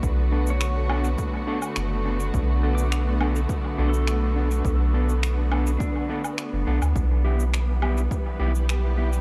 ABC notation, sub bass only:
X:1
M:4/4
L:1/16
Q:1/4=104
K:Bm
V:1 name="Sub bass" clef=bass
B,,,8 z4 F,,,4 | B,,,8 z2 B,,,6 | B,,,8 z4 z F,,, B,,, D,, | B,,,8 z2 B,,,6 |]